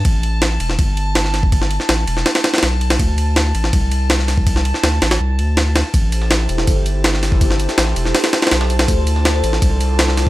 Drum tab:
RD |x---x---x---x---x---x---x---x---|x---x---x---x---x-x-x-xxx---x-x-|x---x---x---x---x---x---x---x---|x---x---x---x-x-----x---x---x---|
HH |--------------------------------|--------------------------------|--------------------------------|--------------------------------|
TB |--------------------------------|--------------------------------|--------------------------------|--------------------------------|
SD |--------o-----o---------o-o-o---|--o---o-o-----o-o-o-o-ooo-----o-|--------o-----o---------o-o-o---|--o---o-o---o-o---------o---o---|
BD |o---------------o-------------o-|o-------------------------------|o---------------o-------------o-|o-------------------------------|

RD |x---x---x---x---x---x---x---x---|x---x---x---x---x-x-x-xxx---x-x-|x---x---x---x---x---x---x---x---|
HH |--------------------------------|------x---------o---------------|--------------------------------|
TB |x---x---x---x---x---x---x---x---|x---x---x---x-------x---x---x---|x---x---x---x---x---x---x---x---|
SD |------o-o-----o---------o-o-o-o-|--o---o-o-o---o-o-o-o-ooo-o---o-|------o-o-----o---------o-o-o---|
BD |o---------------o-------------o-|o-------------------------------|o---------------o---------------|